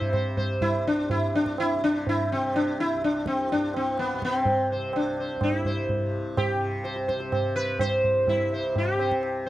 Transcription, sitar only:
0.00 0.61 E4 medium
0.00 0.11 C5 soft
0.13 0.35 C5 soft
0.37 0.59 C5 soft
0.62 0.86 E4 medium
0.87 1.10 D4 medium
1.11 1.35 E4 medium
1.35 1.59 D4 medium
1.60 1.83 E4 medium
1.84 2.05 D4 medium
2.09 2.32 E4 medium
2.32 2.55 C4 medium
2.56 2.79 D4 medium
2.80 3.04 E4 medium
3.04 3.27 D4 medium
3.27 3.51 C4 medium
3.52 3.76 D4 medium
3.76 3.99 C4 medium
3.99 4.23 B3 medium
4.25 4.36 B3 medium
4.36 4.68 C4 medium
4.72 4.93 C5 soft
4.96 5.44 D4 medium
5.20 5.41 C5 soft
5.43 5.58 D#4 medium
5.58 6.38 E4 medium
5.66 5.88 C5 soft
6.38 7.05 G4 medium
6.84 7.07 C5 soft
7.08 7.31 C5 soft
7.32 7.55 C5 soft
7.56 7.80 B4 medium
7.81 8.30 C5 medium
8.29 8.78 E4 medium
8.54 8.75 C5 soft
8.78 9.44 G4 medium
9.00 9.22 C5 soft

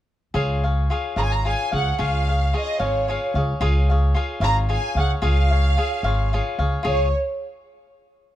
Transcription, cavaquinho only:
0.34 0.64 F4 medium
0.34 0.64 G#4 medium
0.34 0.63 C#5 medium
0.34 0.62 F5 medium
0.64 0.90 G#4 soft
0.64 0.90 C#5 soft
0.64 0.91 F5 soft
0.90 1.17 F4 soft
0.90 1.16 G#4 soft
0.90 1.16 C#5 soft
0.90 1.15 F5 medium
1.16 1.44 F4 soft
1.16 1.45 G#4 soft
1.16 1.45 C#5 soft
1.16 1.45 F5 soft
1.45 1.72 F4 soft
1.45 1.72 G#4 medium
1.45 1.72 C#5 medium
1.45 1.70 F5 medium
1.72 1.97 G#4 soft
1.72 1.98 C#5 soft
1.72 1.99 F5 soft
1.99 2.28 F4 medium
1.99 2.28 G#4 medium
1.99 2.28 C#5 medium
1.99 2.27 F5 medium
2.28 2.53 G#4 soft
2.28 2.54 C#5 soft
2.28 2.53 F5 soft
2.53 2.80 F4 soft
2.53 2.79 G#4 medium
2.53 2.79 C#5 soft
2.53 2.78 F5 soft
2.79 3.07 F4 soft
2.79 3.08 G#4 medium
2.79 3.09 C#5 soft
2.79 3.08 F5 medium
3.08 3.35 F4 soft
3.08 3.35 G#4 medium
3.08 3.35 C#5 medium
3.08 3.34 F5 medium
3.35 3.60 G#4 soft
3.35 3.60 C#5 soft
3.35 3.60 F5 soft
3.61 3.89 F4 medium
3.61 3.89 G#4 medium
3.61 3.89 C#5 medium
3.61 3.89 F5 medium
3.90 4.15 G#4 soft
3.90 4.15 C#5 soft
3.90 4.15 F5 soft
4.14 4.41 F4 medium
4.14 4.41 G#4 medium
4.14 4.40 C#5 medium
4.14 4.40 F5 medium
4.41 4.68 F4 medium
4.41 4.68 G#4 soft
4.41 4.68 C#5 medium
4.41 4.69 F5 medium
4.69 4.95 F4 medium
4.69 4.96 G#4 medium
4.69 4.96 C#5 medium
4.69 4.95 F5 soft
4.97 5.21 G#4 soft
4.97 5.22 C#5 soft
4.97 5.22 F5 soft
5.22 5.50 F4 medium
5.22 5.51 G#4 medium
5.22 5.51 C#5 medium
5.22 5.50 F5 medium
5.51 5.77 G#4 soft
5.51 5.77 C#5 soft
5.51 5.77 F5 soft
5.77 6.03 F4 soft
5.77 6.04 G#4 medium
5.77 6.04 C#5 soft
5.77 6.03 F5 medium
6.04 6.32 F4 soft
6.04 6.32 G#4 medium
6.04 6.33 C#5 soft
6.04 6.33 F5 medium
6.33 6.59 F4 medium
6.33 6.59 G#4 medium
6.33 6.58 C#5 medium
6.33 6.57 F5 medium
6.59 6.83 G#4 soft
6.59 6.84 C#5 soft
6.59 6.84 F5 medium
6.83 7.07 F4 medium
6.83 7.07 G#4 medium
6.83 7.08 C#5 medium
6.83 7.08 F5 medium

